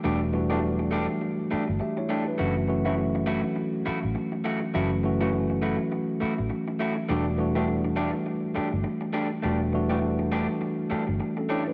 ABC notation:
X:1
M:4/4
L:1/16
Q:"Swing 16ths" 1/4=102
K:Edor
V:1 name="Clean electric guitar"
[A,DG] z2 [A,DG] z2 [A,DG] z3 [A,DG] z3 [A,DG] z | [A,EF] z2 [A,EF] z2 [A,EF] z3 [A,EF] z3 [A,EF] z | [A,EF] z2 [A,EF] z2 [A,EF] z3 [A,EF] z3 [A,EF] z | [A,DG] z2 [A,DG] z2 [A,DG] z3 [A,DG] z3 [A,DG] z |
[A,DG] z2 [A,DG] z2 [A,DG] z3 [A,DG] z3 [A,DG] z |]
V:2 name="Tine electric piano"
z12 [Ge] [Ec]2 [DB]- | [DB] z12 z3 | z16 | z16 |
z12 z [CA] [Ec] [DB] |]
V:3 name="Tine electric piano"
[E,G,A,DF]2 [E,G,A,DF] [E,F,G,A,DF]6 z6 z | [E,F,A,CF]2 [E,F,A,CF] [E,F,A,CF]6 z6 z | [E,F,A,CF]2 [E,F,A,CF] [E,F,A,CF]6 z6 z | [E,G,A,DF]2 [E,G,A,DF] [E,G,A,DF]6 z6 z |
[E,G,A,DF]2 [E,G,A,DF] [E,G,A,DF]6 z6 z |]
V:4 name="Fingered electric bass" clef=bass
E,,,6- E,,, z4 G,,, z4 | F,,,6- F,,, z4 A,,, z4 | F,,,6- F,,, z4 A,,, z4 | E,,,6- E,,, z4 G,,, z4 |
E,,,6- E,,, z4 G,,, z4 |]